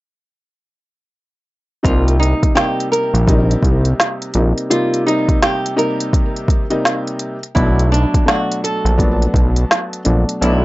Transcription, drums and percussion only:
1.85 kick loud
1.85 closed hi-hat loud
2.08 closed hi-hat medium
2.23 closed hi-hat medium
2.43 kick medium
2.43 closed hi-hat medium
2.57 snare loud
2.57 closed hi-hat medium
2.80 closed hi-hat medium
2.93 closed hi-hat medium
3.15 closed hi-hat medium
3.28 kick medium
3.28 closed hi-hat medium
3.51 closed hi-hat medium
3.63 kick loud
3.63 closed hi-hat medium
3.85 closed hi-hat medium
4.00 snare loud
4.00 closed hi-hat loud
4.22 closed hi-hat soft
4.34 closed hi-hat medium
4.58 closed hi-hat medium
4.71 closed hi-hat loud
4.94 closed hi-hat medium
5.08 closed hi-hat medium
5.29 kick medium
5.29 closed hi-hat medium
5.43 snare loud
5.43 closed hi-hat medium
5.66 closed hi-hat medium
5.79 closed hi-hat medium
6.00 closed hi-hat medium
6.13 kick loud
6.13 closed hi-hat medium
6.36 closed hi-hat medium
6.48 kick loud
6.48 closed hi-hat medium
6.71 closed hi-hat medium
6.85 snare loud
6.85 closed hi-hat loud
7.07 closed hi-hat soft
7.19 closed hi-hat medium
7.43 closed hi-hat medium
7.56 kick loud
7.56 closed hi-hat loud
7.79 closed hi-hat medium
7.94 closed hi-hat medium
8.14 kick medium
8.14 closed hi-hat medium
8.28 snare loud
8.28 closed hi-hat medium
8.52 closed hi-hat medium
8.65 closed hi-hat medium
8.86 closed hi-hat medium
8.99 kick loud
8.99 closed hi-hat medium
9.22 closed hi-hat medium
9.34 kick loud
9.34 closed hi-hat medium
9.56 closed hi-hat medium
9.71 snare loud
9.71 closed hi-hat loud
9.93 closed hi-hat soft
10.05 closed hi-hat medium
10.29 closed hi-hat medium
10.42 closed hi-hat loud

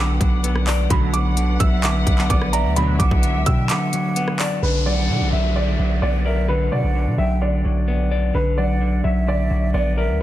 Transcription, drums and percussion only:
0.21 kick medium
0.21 closed hi-hat medium
0.44 closed hi-hat medium
0.56 cross-stick medium
0.67 clap loud
0.67 open hi-hat medium
0.90 kick loud
0.90 closed hi-hat medium
1.14 closed hi-hat medium
1.37 closed hi-hat medium
1.60 kick loud
1.60 closed hi-hat medium
1.84 clap loud
1.84 closed hi-hat medium
2.07 kick medium
2.07 closed hi-hat medium
2.18 clap medium
2.30 kick medium
2.30 closed hi-hat medium
2.42 cross-stick medium
2.53 closed hi-hat medium
2.76 closed hi-hat medium
3.00 kick medium
3.00 closed hi-hat medium
3.11 kick loud
3.23 closed hi-hat medium
3.46 kick loud
3.46 closed hi-hat medium
3.70 clap loud
3.70 closed hi-hat medium
3.93 closed hi-hat medium
4.16 closed hi-hat medium
4.28 cross-stick medium
4.39 clap loud
4.39 open hi-hat medium

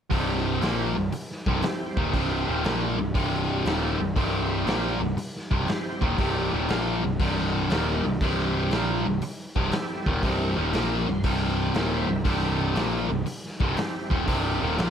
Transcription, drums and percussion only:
0.11 kick loud
0.11 open hi-hat medium
0.62 snare loud
0.62 open hi-hat medium
1.12 open hi-hat medium
1.31 snare soft
1.46 kick loud
1.62 snare loud
1.62 open hi-hat medium
1.97 kick loud
2.14 kick loud
2.14 open hi-hat medium
2.64 snare loud
2.64 open hi-hat soft
3.15 kick loud
3.15 open hi-hat medium
3.66 snare loud
3.66 open hi-hat medium
4.16 kick loud
4.16 open hi-hat medium
4.67 snare loud
4.67 open hi-hat medium
5.17 open hi-hat medium
5.36 snare soft
5.51 kick loud
5.68 snare loud
5.68 open hi-hat medium
6.02 kick loud
6.18 kick loud
6.18 open hi-hat medium
6.69 snare loud
6.69 open hi-hat medium
7.20 kick loud
7.20 open hi-hat medium
7.38 snare soft
7.70 snare loud
7.70 open hi-hat medium
8.21 kick loud
8.21 open hi-hat medium
8.71 snare medium
8.71 open hi-hat soft
9.22 open hi-hat medium
9.56 kick medium
9.72 snare loud
9.72 open hi-hat medium
10.06 kick loud
10.23 kick loud
10.23 open hi-hat medium
10.73 snare medium
10.73 open hi-hat medium
11.24 kick loud
11.24 open hi-hat medium
11.43 snare soft
11.74 snare loud
11.74 open hi-hat medium
12.25 kick loud
12.25 open hi-hat medium
12.76 snare loud
12.76 open hi-hat medium
13.26 open hi-hat medium
13.45 snare soft
13.60 kick loud
13.77 snare loud
13.77 open hi-hat medium
14.11 kick loud
14.28 kick loud
14.28 open hi-hat medium
14.78 snare loud
14.78 open hi-hat medium

